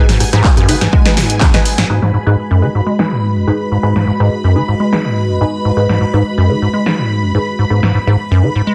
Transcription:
Already playing: ambient pad G#3 F#4 B4 F#5, string machine G#5
0.09 acid bass G#2, snare, open hi-hat
0.20 acid bass G#2, cross-stick, open hi-hat
0.33 acid bass G#2, synth stab D#4 G#4 B4, cross-stick, snare, closed hi-hat
0.44 kick, clap
0.57 acid bass F#2, cross-stick, closed hi-hat
0.69 acid bass D#3, synth stab D#4 G#4 B4, open hi-hat
0.81 acid bass G#2, cross-stick, snare, closed hi-hat
0.93 acid bass G#3, kick
1.06 synth stab D#4 G#4 B4, snare, closed hi-hat
1.17 acid bass G#2, snare, open hi-hat
1.30 closed hi-hat
1.41 acid bass F#2, kick, snare, clap
1.54 acid bass G#2, synth stab D#4 G#4 B4, snare, closed hi-hat
1.65 open hi-hat
1.78 acid bass G#2, snare, closed hi-hat
1.89 acid bass G#2, ambient pad G#3, synth stab D#4 G#4 B4, string machine B5
1.95 ambient pad F#4
2.02 acid bass G#2, snare
2.14 acid bass G#2
2.27 acid bass G#2, synth stab D#4 G#4 B4
2.39 ambient pad B4
2.51 acid bass F#2
2.58 ambient pad D#5
2.62 acid bass D#3, synth stab D#4 G#4 B4
2.75 acid bass G#2
2.87 acid bass G#3
2.99 synth stab D#4 G#4 B4, snare
3.11 acid bass G#2
3.35 acid bass F#2
3.48 acid bass G#2, synth stab D#4 G#4 B4
3.72 acid bass G#2
3.83 acid bass G#2, synth stab D#4 G#4 B4
3.96 acid bass G#2, snare
4.07 acid bass G#2
4.20 acid bass G#2, synth stab D#4 G#4 B4
4.44 acid bass F#2
4.56 acid bass D#3, synth stab D#4 G#4 B4
4.68 acid bass G#2
4.80 acid bass G#3
4.93 synth stab D#4 G#4 B4, snare
5.04 acid bass G#2
5.28 acid bass F#2
5.41 acid bass G#2, synth stab D#4 G#4 B4
5.65 acid bass G#2
5.77 acid bass G#2, synth stab D#4 G#4 B4
5.89 acid bass G#2, snare
6.01 acid bass G#2
6.14 acid bass G#2, synth stab D#4 G#4 B4
6.38 acid bass F#2
6.49 acid bass D#3, synth stab D#4 G#4 B4
6.62 acid bass G#2
6.74 acid bass G#3
6.86 synth stab D#4 G#4 B4, snare
6.98 acid bass G#2
7.22 acid bass F#2
7.35 acid bass G#2, synth stab D#4 G#4 B4
7.59 acid bass G#2
7.70 acid bass G#2, synth stab D#4 G#4 B4
7.83 acid bass G#2, snare
7.95 acid bass G#2
8.07 acid bass G#2, synth stab D#4 G#4 B4
8.31 acid bass F#2
8.43 acid bass D#3, synth stab D#4 G#4 B4
8.55 acid bass G#2
8.67 acid bass G#3

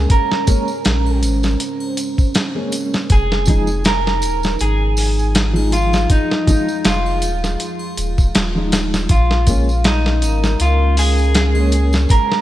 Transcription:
Already playing: felt piano G#3 A#3 C#4, ambient pad G#3 C#4, clean electric guitar G#4
0.10 clean electric guitar A#4, ambient pad C5, kick, closed hi-hat, tambourine
0.32 snare
0.46 felt piano G#3 A#3 C#4, kick, closed hi-hat, tambourine
0.68 tambourine
0.84 sub bass A#1, snare, closed hi-hat, tambourine
1.06 triangle
1.23 sub bass G#1, closed hi-hat, tambourine
1.43 snare, tambourine
1.60 closed hi-hat, tambourine
1.80 triangle
1.97 closed hi-hat, tambourine
2.18 kick, tambourine
2.34 snare, closed hi-hat, tambourine
2.55 felt piano G#3 A#3 C#4
2.72 closed hi-hat, tambourine
2.94 snare, tambourine
3.09 sub bass F1, ambient pad F3 D#4 G#4, clean electric guitar G#4, kick, closed hi-hat, tambourine
3.32 snare
3.46 felt piano F3 G#3 D#4, kick, closed hi-hat, tambourine
3.67 tambourine
3.84 clean electric guitar A#4, snare, closed hi-hat, tambourine
4.07 snare
4.22 sub bass D#1, closed hi-hat, tambourine
4.43 snare, tambourine
4.59 sub bass G#1, clean electric guitar G#4, closed hi-hat, tambourine
4.97 open hi-hat, tambourine
5.19 tambourine
5.35 snare, closed hi-hat, tambourine
5.53 felt piano F3 G#3, triangle
5.59 felt piano D#4
5.72 clean electric guitar F4, closed hi-hat, tambourine
5.93 snare, tambourine
6.10 clean electric guitar D#4, ambient pad F4, kick, closed hi-hat, tambourine
6.31 snare
6.47 felt piano F3 G#3 D#4, kick, closed hi-hat, tambourine
6.68 tambourine
6.85 sub bass F1, clean electric guitar F4, snare, closed hi-hat, tambourine
7.06 triangle
7.22 sub bass D#1, closed hi-hat, tambourine
7.44 snare, tambourine
7.60 closed hi-hat, tambourine
7.79 triangle
7.97 sub bass D#1, closed hi-hat, tambourine
8.18 kick, tambourine
8.35 sub bass D#1, snare, closed hi-hat, tambourine
8.55 felt piano F3 G#3 D#4
8.72 snare, closed hi-hat, tambourine
8.94 snare, tambourine
9.09 sub bass A#1, ambient pad G#3 C#4 A#4, clean electric guitar F4, kick, closed hi-hat, tambourine
9.31 snare
9.47 felt piano G#3 A#3 C#4, kick, closed hi-hat, tambourine
9.69 tambourine
9.84 clean electric guitar D#4, snare, closed hi-hat, tambourine
10.06 snare
10.22 sub bass G#1, closed hi-hat, tambourine
10.44 snare, tambourine
10.60 sub bass C#2, clean electric guitar F4, closed hi-hat, tambourine
10.97 clean electric guitar G#4, open hi-hat, tambourine
11.18 tambourine
11.35 snare, closed hi-hat, tambourine
11.54 felt piano G#3 A#3, triangle
11.60 felt piano C#4
11.72 closed hi-hat, tambourine
11.93 snare, tambourine
12.09 clean electric guitar A#4, ambient pad C5, kick, closed hi-hat, tambourine
12.32 snare

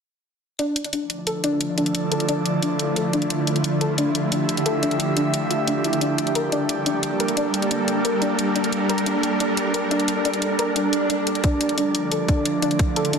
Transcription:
0.59 synth drone D3 A3 E4 F4, analog synth pad D4, synth pluck D4, closed hi-hat
0.76 closed hi-hat
0.84 closed hi-hat
0.93 synth pluck D4, closed hi-hat
1.00 analog synth pad F3
1.10 closed hi-hat
1.27 synth pluck A4, closed hi-hat
1.39 analog synth pad A4
1.44 synth pluck D4, closed hi-hat
1.53 analog synth pad D5
1.61 closed hi-hat
1.78 synth pluck D4, closed hi-hat
1.86 closed hi-hat
1.95 closed hi-hat
2.12 synth pluck A4, closed hi-hat
2.20 closed hi-hat
2.29 synth pluck D4, closed hi-hat
2.46 closed hi-hat
2.62 synth pluck D4, closed hi-hat
2.79 closed hi-hat
2.96 synth pluck A4, closed hi-hat
3.13 synth pluck D4, closed hi-hat
3.22 closed hi-hat
3.30 closed hi-hat
3.47 synth pluck D4, closed hi-hat
3.56 closed hi-hat
3.64 closed hi-hat
3.81 synth pluck A4, closed hi-hat
3.88 analog synth pad E5
3.98 synth pluck D4, closed hi-hat
4.10 analog synth pad G4
4.15 closed hi-hat
4.32 synth pluck D4, closed hi-hat
4.49 closed hi-hat
4.57 closed hi-hat
4.66 synth pluck A4, closed hi-hat
4.83 synth pluck D4, closed hi-hat
4.91 closed hi-hat
5.00 closed hi-hat
5.17 synth pluck D4, closed hi-hat
5.34 closed hi-hat
5.51 synth pluck F4, closed hi-hat
5.67 synth pluck D4, closed hi-hat
5.84 synth pluck E4, closed hi-hat
5.93 closed hi-hat
6.01 synth drone G3 D4 A4 A#4, synth pluck D4, closed hi-hat
6.18 closed hi-hat
6.27 closed hi-hat
6.35 synth pluck A#4, closed hi-hat
6.52 synth pluck D4, closed hi-hat
6.69 closed hi-hat
6.79 analog synth pad A#3
6.86 synth pluck D4, closed hi-hat
6.92 analog synth pad D5
7.03 closed hi-hat
7.20 synth pluck A#4, closed hi-hat
7.28 closed hi-hat
7.37 synth pluck D4, closed hi-hat
7.54 closed hi-hat
7.62 closed hi-hat
7.71 synth pluck D4, closed hi-hat
7.88 closed hi-hat
8.05 synth pluck A#4, closed hi-hat
8.22 synth pluck D4, closed hi-hat
8.39 closed hi-hat
8.56 synth pluck D4, closed hi-hat
8.64 closed hi-hat
8.72 closed hi-hat
8.89 synth pluck A#4, closed hi-hat
8.98 closed hi-hat
9.06 synth pluck D4, closed hi-hat
9.23 closed hi-hat
9.40 synth pluck D4, closed hi-hat
9.57 closed hi-hat
9.74 synth pluck A#4, closed hi-hat
9.91 synth pluck D4, closed hi-hat
10.00 closed hi-hat
10.08 closed hi-hat
10.25 synth pluck D4, closed hi-hat
10.33 closed hi-hat
10.42 closed hi-hat
10.59 synth pluck A#4, closed hi-hat
10.76 synth pluck D4, closed hi-hat, swell
10.93 closed hi-hat
11.10 synth pluck D4, closed hi-hat
11.27 closed hi-hat
11.35 closed hi-hat
11.44 synth drone D3 A3 E4 F4, synth pluck D4, kick, closed hi-hat
11.60 analog synth pad F3, closed hi-hat
11.69 closed hi-hat
11.78 synth pluck D4, closed hi-hat
11.95 closed hi-hat
12.12 synth pluck A4, closed hi-hat
12.28 synth pluck D4, analog synth pad A4, kick, closed hi-hat
12.45 closed hi-hat
12.62 synth pluck D4, closed hi-hat
12.71 closed hi-hat
12.79 kick, closed hi-hat
12.96 synth pluck A4, closed hi-hat
13.05 closed hi-hat
13.13 synth pluck D4, closed hi-hat

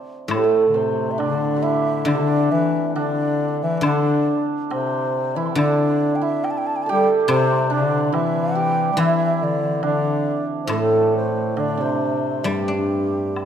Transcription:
Already playing: guzheng D3, hammered dulcimer A3 C4 D4
0.28 guzheng A2, bass clarinet A2, hammered dulcimer A3, xiao A4, high woodblock
0.38 xiao G4
0.44 hammered dulcimer A3, xiao A4
0.68 bass clarinet D3
0.74 bass clarinet C3, hammered dulcimer C4, xiao C5
1.11 xiao E5
1.18 bass clarinet D3, hammered dulcimer D4, xiao D5, low woodblock
1.56 hammered dulcimer G4
1.63 hammered dulcimer E4, xiao E5
2.05 guzheng D3, bass clarinet D3, hammered dulcimer D4, xiao D5, high woodblock
2.14 bass clarinet C3
2.22 bass clarinet D3
2.52 bass clarinet E3, xiao E5
2.88 bass clarinet E3
2.95 bass clarinet D3, hammered dulcimer D4, xiao D5, low woodblock
3.62 bass clarinet E3, xiao E5
3.78 guzheng D3, xiao E5
3.83 bass clarinet D3, hammered dulcimer D4, xiao D5, high woodblock
4.70 bass clarinet C3, hammered dulcimer C4, xiao C5, low woodblock
5.36 bass clarinet E3, hammered dulcimer E4, xiao E5
5.45 xiao A5 C6
5.51 bass clarinet E3, xiao E5 G5
5.55 guzheng D3, bass clarinet D3, hammered dulcimer D4, xiao D5, high woodblock
6.16 xiao G5
6.21 hammered dulcimer E4, xiao E5
6.44 xiao G5, low woodblock
6.51 xiao A5
6.58 xiao G5
6.66 xiao A5
6.76 xiao G5
6.83 hammered dulcimer A4, xiao A5
6.89 bass clarinet G3, hammered dulcimer G4, xiao G5
7.28 guzheng C3, bass clarinet C3, hammered dulcimer C4, xiao C5, high woodblock
7.70 bass clarinet D3, hammered dulcimer D4, xiao D5
8.12 bass clarinet E3, hammered dulcimer E4, xiao E5, low woodblock
8.55 hammered dulcimer G4, xiao G5
8.93 bass clarinet G3, xiao G5
8.97 guzheng E3, bass clarinet E3, hammered dulcimer E4, xiao E5, high woodblock
9.36 bass clarinet E3
9.42 bass clarinet D3, xiao D5
9.83 bass clarinet D3, hammered dulcimer D4, xiao D5, low woodblock
10.65 guzheng A2, xiao C5
10.69 bass clarinet A2, hammered dulcimer A3, xiao A4, high woodblock
11.17 xiao C5
11.57 bass clarinet D3, hammered dulcimer D4, xiao D5, low woodblock
11.77 bass clarinet C3, hammered dulcimer C4, xiao C5
12.43 bass clarinet G2, hammered dulcimer G3, guzheng G3, high woodblock
12.48 xiao G4
12.68 guzheng D4
13.36 high woodblock, low woodblock

